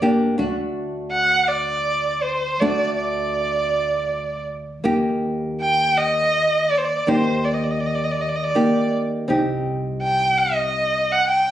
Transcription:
0.00 0.35 G1 medium
0.00 0.37 A#3 soft
0.00 0.36 D4 soft
0.00 0.38 G4 medium
0.38 2.58 D2 medium
0.38 2.57 A3 medium
0.38 2.57 D4 medium
0.38 2.58 F#4 medium
1.12 1.50 F#5 medium
1.48 2.24 D5 medium
2.22 2.62 C5 medium
2.60 4.80 D2 medium
2.60 4.80 A3 soft
2.60 4.80 D4 medium
2.60 4.80 F#4 medium
2.60 2.96 D5 medium
2.96 4.42 D5 medium
4.84 7.03 D#2 medium
4.84 7.02 A#3 medium
4.84 7.03 D#4 soft
4.84 7.03 G4 medium
5.61 5.99 G5 medium
5.97 6.73 D#5 medium
6.71 6.79 D5 medium
6.77 6.86 C5 medium
6.84 7.09 D5 medium
7.07 9.24 D#2 medium
7.07 8.51 A#3 medium
7.07 8.52 D#4 soft
7.07 8.52 G4 medium
7.07 7.46 C5 medium
7.45 7.56 D5 medium
7.54 7.66 D#5 medium
7.64 7.72 D5 soft
7.71 7.82 D#5 soft
7.80 7.88 D5 medium
7.87 7.96 D#5 medium
7.95 8.06 D5 medium
8.04 8.13 D#5 medium
8.11 8.23 D5 medium
8.21 8.30 D#5 medium
8.29 8.37 D5 medium
8.35 8.45 D#5 medium
8.43 8.91 D5 medium
8.55 9.27 A#3 soft
8.55 9.28 D#4 soft
8.55 9.29 G4 medium
9.28 11.45 C2 medium
9.28 11.45 C4 medium
9.28 11.45 D#4 soft
9.28 11.46 G4 medium
10.03 10.40 G5 medium
10.38 11.13 D#5 medium
11.12 11.29 F#5 medium
11.30 11.51 G5 medium

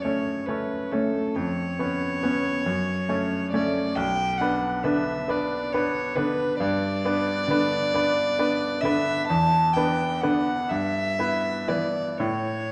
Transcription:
0.00 1.39 F#2 medium
0.00 0.05 A3 soft
0.00 0.05 C#4 soft
0.00 0.06 C#5 soft
0.00 0.48 C#5 medium
0.05 0.45 A3 soft
0.05 0.45 C#4 soft
0.05 0.46 C#5 soft
0.46 0.89 A3 soft
0.46 0.89 C#4 soft
0.46 0.93 B4 medium
0.46 0.89 C#5 soft
0.91 1.32 A3 soft
0.91 1.26 A3 medium
0.91 1.33 C#4 soft
0.91 1.37 A4 medium
0.91 1.33 C#5 soft
1.36 1.79 F2 medium
1.36 3.51 C#5 loud
1.79 2.19 B3 soft
1.79 2.19 C#4 soft
1.79 2.19 C#5 medium
2.23 2.62 B3 soft
2.23 2.56 B3 medium
2.23 2.62 C#4 soft
2.23 2.62 C#5 medium
2.66 3.08 F#2 medium
3.09 3.49 A3 soft
3.09 3.49 C#4 soft
3.09 3.49 C#5 medium
3.52 3.86 A3 medium
3.52 3.93 A3 soft
3.52 3.93 C#4 soft
3.52 3.93 C#5 medium
3.52 3.97 D5 medium
3.95 4.39 B1 medium
3.95 4.39 G5 loud
4.38 4.81 B3 soft
4.38 4.81 D4 medium
4.38 4.81 B4 medium
4.38 4.85 F#5 medium
4.84 5.18 D3 medium
4.84 5.25 B3 medium
4.84 5.25 D4 medium
4.84 5.26 B4 medium
4.84 5.32 E5 medium
5.28 5.69 B3 soft
5.28 5.69 D4 soft
5.28 5.70 B4 soft
5.28 5.74 D5 medium
5.72 6.14 B3 medium
5.72 6.14 D4 medium
5.72 6.14 B4 medium
5.72 6.17 C#5 medium
6.15 6.50 D3 medium
6.15 6.56 B3 medium
6.15 6.56 D4 medium
6.15 6.58 B4 loud
6.15 6.57 B4 medium
6.59 7.03 G2 medium
6.59 8.83 D5 loud
7.05 7.45 B3 medium
7.05 7.46 D4 medium
7.05 7.46 B4 medium
7.48 7.82 D3 medium
7.48 7.90 B3 soft
7.48 7.90 D4 medium
7.48 7.91 B4 medium
7.94 8.35 B3 medium
7.94 8.35 D4 medium
7.94 8.36 B4 medium
8.39 8.80 B3 medium
8.39 8.80 D4 medium
8.39 8.80 B4 medium
8.81 9.17 D3 medium
8.81 9.26 B3 medium
8.81 9.26 D4 medium
8.81 9.27 E5 loud
8.85 9.26 B4 medium
9.28 9.74 E2 medium
9.28 9.75 A5 loud
9.74 10.19 B3 medium
9.74 10.19 D4 medium
9.74 10.19 B4 medium
9.74 10.23 G5 medium
10.21 10.59 D3 medium
10.21 10.67 B3 medium
10.21 10.67 D4 soft
10.21 10.67 B4 medium
10.21 10.71 F#5 medium
10.69 11.18 G2 medium
10.69 11.70 E5 loud
11.19 11.65 B3 medium
11.19 11.66 E4 soft
11.19 11.66 B4 medium
11.68 12.08 E3 medium
11.68 12.17 B3 soft
11.68 12.16 E4 soft
11.68 12.17 B4 medium
11.68 12.20 D5 medium
12.18 12.71 A2 medium
12.18 12.72 C#5 medium

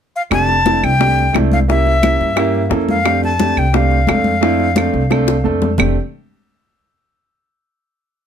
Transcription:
0.16 0.22 F5 medium
0.31 0.79 F1 medium
0.31 0.55 A3 medium
0.31 0.55 C4 medium
0.31 0.55 D4 medium
0.31 0.55 G4 medium
0.31 0.86 A5 loud
0.31 high bongo medium
0.31 high conga soft
0.31 claves medium
0.48 high bongo soft
0.48 high conga soft
0.66 0.90 A3 medium
0.66 0.90 C4 medium
0.66 0.90 D4 medium
0.66 0.90 E4 medium
0.66 high bongo medium
0.66 high conga loud
0.83 1.31 C2 medium
0.83 1.35 G5 loud
0.83 high bongo soft
0.83 high conga soft
0.83 claves medium
0.99 1.24 A3 medium
0.99 1.24 C4 medium
0.99 1.24 D4 medium
0.99 1.24 G4 medium
0.99 high bongo medium
0.99 high conga soft
1.17 high bongo soft
1.17 high conga soft
1.33 2.15 C2 medium
1.33 1.58 A3 medium
1.33 1.58 C4 medium
1.33 1.58 D4 medium
1.33 1.58 E4 medium
1.33 high bongo medium
1.33 low bongo medium
1.33 high conga medium
1.33 claves medium
1.52 1.59 F5 medium
1.52 high conga medium
1.68 1.93 A#3 medium
1.68 1.93 C#4 medium
1.68 1.93 E4 medium
1.68 1.93 G4 medium
1.68 2.68 E5 loud
1.68 high bongo medium
1.68 high conga soft
1.87 high bongo soft
1.87 high conga soft
2.02 2.26 A#3 medium
2.02 2.27 C#4 medium
2.02 2.27 E4 medium
2.02 2.27 G4 medium
2.02 high bongo medium
2.02 high conga medium
2.02 claves medium
2.20 2.68 G2 medium
2.20 high bongo soft
2.20 high conga soft
2.36 2.61 A#3 loud
2.36 2.61 C#4 medium
2.36 2.61 E4 medium
2.36 2.61 G4 loud
2.36 high bongo medium
2.36 high conga soft
2.36 claves medium
2.55 high conga soft
2.69 3.51 F2 medium
2.69 2.94 A#3 medium
2.69 2.95 C#4 medium
2.69 2.95 E4 medium
2.69 2.95 A4 medium
2.69 high bongo medium
2.69 low bongo medium
2.69 high conga soft
2.89 3.21 F5 medium
2.89 high bongo soft
2.89 high conga medium
3.05 3.29 A3 medium
3.05 3.29 C4 medium
3.05 3.30 D4 medium
3.05 3.30 G4 medium
3.05 high bongo medium
3.05 high conga soft
3.05 claves medium
3.23 3.60 A5 medium
3.23 high bongo soft
3.23 high conga soft
3.39 3.64 A3 medium
3.39 3.64 C4 medium
3.39 3.64 D4 medium
3.39 3.64 G4 medium
3.39 high bongo medium
3.39 high conga loud
3.56 4.05 C2 medium
3.56 3.77 G5 medium
3.56 high bongo soft
3.56 high conga soft
3.56 claves medium
3.73 3.98 A3 medium
3.73 3.98 C4 medium
3.73 3.98 D4 medium
3.73 3.98 G4 medium
3.73 5.46 F5 medium
3.73 high bongo medium
3.73 high conga soft
3.90 high bongo soft
3.90 high conga soft
4.07 4.88 F2 medium
4.07 4.32 A3 medium
4.07 4.32 C4 medium
4.07 4.32 D4 medium
4.07 4.32 A4 medium
4.07 high bongo medium
4.07 low bongo medium
4.07 high conga medium
4.07 claves medium
4.24 high conga medium
4.41 4.66 A3 medium
4.41 4.66 C4 medium
4.41 4.66 D4 medium
4.41 4.67 E4 loud
4.41 high bongo medium
4.41 high conga soft
4.59 high bongo soft
4.59 high conga soft
4.75 5.00 A3 medium
4.75 5.01 C4 medium
4.75 5.01 D4 medium
4.75 5.01 A4 medium
4.75 high bongo medium
4.75 high conga medium
4.75 claves medium
4.93 5.42 C2 medium
4.93 high bongo soft
4.93 high conga soft
5.10 5.35 A3 medium
5.10 5.35 C4 medium
5.10 5.35 D4 medium
5.10 5.35 A4 loud
5.10 high bongo medium
5.10 high conga soft
5.10 claves medium
5.27 high bongo medium
5.27 high conga soft
5.44 5.76 F2 medium
5.44 5.68 A3 medium
5.44 5.69 C4 medium
5.44 5.69 D4 medium
5.44 5.69 A4 medium
5.44 high conga soft
5.62 low bongo medium
5.62 high conga medium
5.78 5.95 F1 medium
5.78 5.95 A3 medium
5.78 5.95 C4 medium
5.78 5.95 D4 medium
5.78 5.95 G4 medium
5.78 low bongo loud
5.78 low conga loud
5.78 claves loud

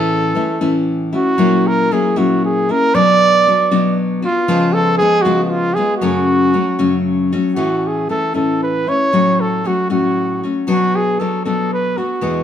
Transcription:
0.00 0.36 A2 medium
0.00 0.34 E3 medium
0.00 0.34 A3 medium
0.00 0.35 C#4 medium
0.00 0.36 E4 medium
0.00 0.90 A4 loud
0.35 0.60 E3 medium
0.35 0.60 A3 medium
0.35 0.60 C#4 medium
0.35 0.60 E4 medium
0.61 1.14 A2 medium
0.61 1.14 E3 medium
0.61 1.13 A3 medium
0.61 1.12 C#4 medium
0.61 1.11 E4 medium
1.13 1.38 A3 soft
1.13 1.37 C#4 medium
1.13 1.38 E4 medium
1.13 1.69 F#4 medium
1.38 1.91 A#2 medium
1.38 1.90 F#3 medium
1.38 1.90 A#3 medium
1.38 1.91 C#4 medium
1.38 1.91 E4 medium
1.67 1.94 A#4 medium
1.91 2.16 F#3 medium
1.91 2.16 A#3 medium
1.91 2.15 C#4 medium
1.91 2.15 E4 medium
1.91 2.19 G#4 medium
2.16 2.70 A#2 medium
2.16 2.70 F#3 medium
2.16 2.69 A#3 medium
2.16 2.68 C#4 medium
2.16 2.68 E4 medium
2.16 2.45 F#4 medium
2.45 2.72 G#4 medium
2.69 2.94 A#3 soft
2.69 2.94 C#4 soft
2.69 2.94 E4 medium
2.69 2.96 A#4 loud
2.95 3.47 B2 medium
2.95 3.46 F#3 medium
2.95 3.47 B3 medium
2.95 3.47 D4 medium
2.95 3.47 F#4 medium
2.95 3.99 D5 loud
3.47 3.71 F#3 medium
3.47 3.71 B3 medium
3.47 3.70 D4 medium
3.47 3.70 F#4 medium
3.71 4.24 B2 medium
3.71 4.24 F#3 medium
3.71 4.23 B3 medium
3.71 4.22 D4 medium
3.71 4.21 F#4 medium
4.22 4.48 B3 soft
4.22 4.48 D4 soft
4.22 4.75 F4 loud
4.22 4.48 F#4 medium
4.48 5.00 C#3 medium
4.48 4.99 F3 loud
4.48 5.00 G#3 medium
4.48 5.00 B3 medium
4.48 5.01 F4 medium
4.73 4.97 A4 loud
4.97 5.25 F3 medium
4.97 5.24 G#3 medium
4.97 5.23 G#4 loud
5.01 5.24 B3 medium
5.01 5.24 F4 medium
5.22 5.76 B3 medium
5.22 5.75 F4 medium
5.22 5.44 F#4 loud
5.26 5.78 C#3 medium
5.26 5.78 F3 medium
5.26 5.77 G#3 medium
5.44 5.51 F#4 medium
5.50 5.75 F4 loud
5.74 6.02 G#3 soft
5.74 6.02 B3 medium
5.74 6.01 F4 medium
5.74 5.97 G#4 loud
5.97 6.54 C#3 medium
5.97 7.01 F#4 medium
6.01 6.54 F#2 medium
6.01 6.52 F#3 medium
6.01 6.53 A3 medium
6.01 6.54 C#4 medium
6.01 6.54 F#4 medium
6.53 6.78 F#3 medium
6.53 6.78 A3 medium
6.53 6.78 C#4 medium
6.53 6.78 F#4 medium
6.79 7.33 F#2 medium
6.79 7.33 C#3 medium
6.79 7.33 F#3 medium
6.79 7.33 A3 medium
6.79 7.32 C#4 medium
6.79 7.31 F#4 medium
7.33 7.56 F#3 soft
7.33 7.55 A3 medium
7.33 7.56 C#4 medium
7.33 7.57 F#4 medium
7.55 8.10 A2 medium
7.55 8.08 E3 medium
7.55 8.09 A3 medium
7.55 8.10 C#4 medium
7.55 8.09 E4 medium
7.55 7.88 F#4 medium
7.87 8.09 G#4 medium
8.09 8.34 E3 medium
8.09 8.33 A3 medium
8.09 8.33 C#4 medium
8.09 8.33 E4 soft
8.09 8.34 A4 medium
8.34 8.88 A2 soft
8.34 8.88 E3 medium
8.34 8.88 A3 soft
8.34 8.87 C#4 medium
8.34 8.86 E4 medium
8.34 8.62 A4 medium
8.63 8.90 B4 medium
8.87 9.12 A3 soft
8.87 9.12 C#4 soft
8.87 9.13 E4 soft
8.87 9.42 C#5 loud
9.13 9.65 A2 medium
9.13 9.64 F#3 medium
9.13 9.64 A3 medium
9.13 9.64 C#4 medium
9.13 9.65 F#4 medium
9.40 9.68 A4 medium
9.64 9.89 F#3 soft
9.64 9.89 A3 medium
9.64 9.89 C#4 medium
9.64 9.89 F#4 medium
9.90 10.43 A2 medium
9.90 10.67 F#3 soft
9.90 10.43 A3 medium
9.90 10.43 C#4 medium
9.90 10.43 F#4 medium
9.90 10.45 F#4 medium
10.43 10.67 A3 soft
10.43 10.67 C#4 medium
10.43 10.67 F#4 medium
10.67 11.20 B2 medium
10.67 11.19 F#3 medium
10.67 11.20 B3 medium
10.67 11.20 D4 medium
10.67 11.21 F#4 medium
10.67 10.97 F#4 loud
10.95 11.21 G#4 medium
11.20 11.45 F#3 medium
11.20 11.45 B3 medium
11.20 11.44 D4 medium
11.20 11.44 F#4 medium
11.20 11.45 A4 medium
11.45 11.98 B2 medium
11.45 11.98 F#3 medium
11.45 11.98 B3 medium
11.45 11.97 D4 medium
11.45 11.96 F#4 medium
11.45 11.71 A4 medium
11.73 11.99 B4 medium
11.97 12.21 B3 soft
11.97 12.22 D4 soft
11.97 12.43 F#4 medium
11.97 12.21 F#4 soft
12.21 12.43 E2 medium
12.21 12.43 B2 medium
12.21 12.43 E3 medium
12.21 12.43 G#3 medium
12.21 12.43 B3 medium
12.21 12.43 F#4 medium

